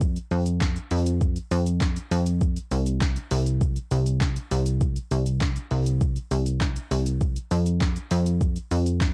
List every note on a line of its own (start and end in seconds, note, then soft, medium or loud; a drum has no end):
0.00 0.18 F2 medium
0.00 kick loud
0.00 shaker medium
0.16 closed hi-hat medium
0.16 shaker medium
0.31 0.78 F2 loud
0.31 open hi-hat medium
0.31 shaker medium
0.46 closed hi-hat medium
0.46 shaker medium
0.61 kick loud
0.61 snare loud
0.61 clap loud
0.61 shaker medium
0.76 closed hi-hat medium
0.76 shaker medium
0.91 1.38 F2 loud
0.91 open hi-hat medium
0.91 shaker medium
1.06 closed hi-hat medium
1.06 shaker medium
1.21 kick loud
1.21 shaker medium
1.36 closed hi-hat medium
1.36 shaker soft
1.51 1.98 F2 medium
1.51 open hi-hat medium
1.51 shaker medium
1.66 closed hi-hat medium
1.66 shaker medium
1.81 kick loud
1.81 snare loud
1.81 clap loud
1.81 shaker medium
1.96 closed hi-hat medium
1.96 shaker medium
2.11 2.58 F2 medium
2.11 open hi-hat medium
2.11 shaker medium
2.26 closed hi-hat medium
2.26 shaker medium
2.41 kick loud
2.41 shaker medium
2.56 closed hi-hat medium
2.56 shaker medium
2.71 3.18 C2 medium
2.71 open hi-hat medium
2.71 shaker medium
2.86 closed hi-hat medium
2.86 shaker medium
3.01 kick loud
3.01 snare loud
3.01 clap loud
3.01 shaker medium
3.16 closed hi-hat medium
3.16 shaker medium
3.31 3.78 C2 loud
3.31 open hi-hat medium
3.31 shaker medium
3.46 closed hi-hat medium
3.46 shaker medium
3.61 kick loud
3.61 shaker medium
3.76 closed hi-hat medium
3.76 shaker medium
3.91 4.38 C2 loud
3.91 open hi-hat medium
3.91 shaker medium
4.06 closed hi-hat medium
4.06 shaker medium
4.21 kick loud
4.21 snare medium
4.21 clap loud
4.21 shaker medium
4.36 closed hi-hat medium
4.36 shaker medium
4.51 4.98 C2 loud
4.51 open hi-hat medium
4.51 shaker medium
4.66 closed hi-hat medium
4.66 shaker medium
4.81 kick loud
4.81 shaker medium
4.96 closed hi-hat medium
4.96 shaker medium
5.11 5.58 C2 medium
5.11 open hi-hat medium
5.11 shaker medium
5.26 closed hi-hat medium
5.26 shaker medium
5.41 kick loud
5.41 snare loud
5.41 clap loud
5.41 shaker medium
5.56 closed hi-hat medium
5.56 shaker medium
5.71 6.18 C2 loud
5.71 open hi-hat medium
5.71 shaker medium
5.86 closed hi-hat medium
5.86 shaker medium
6.01 kick loud
6.01 shaker medium
6.16 closed hi-hat soft
6.16 shaker soft
6.31 6.78 C2 medium
6.31 open hi-hat medium
6.31 shaker medium
6.46 closed hi-hat medium
6.46 shaker medium
6.61 kick loud
6.61 snare medium
6.61 clap loud
6.61 shaker medium
6.76 closed hi-hat medium
6.76 shaker medium
6.91 7.38 C2 medium
6.91 open hi-hat medium
6.91 shaker medium
7.06 closed hi-hat medium
7.06 shaker medium
7.21 kick loud
7.21 shaker medium
7.36 closed hi-hat medium
7.36 shaker medium
7.51 7.98 F2 medium
7.51 open hi-hat medium
7.51 shaker medium
7.66 closed hi-hat medium
7.66 shaker medium
7.81 kick loud
7.81 snare loud
7.81 clap loud
7.81 shaker medium
7.96 closed hi-hat medium
7.96 shaker medium
8.11 8.58 F2 loud
8.11 open hi-hat medium
8.11 shaker medium
8.26 closed hi-hat medium
8.26 shaker medium
8.41 kick loud
8.41 shaker medium
8.56 closed hi-hat medium
8.56 shaker medium
8.71 9.14 F2 medium
8.71 open hi-hat medium
8.71 shaker medium
8.86 closed hi-hat medium
8.86 shaker medium
9.01 kick loud
9.01 snare loud
9.01 clap loud
9.01 shaker medium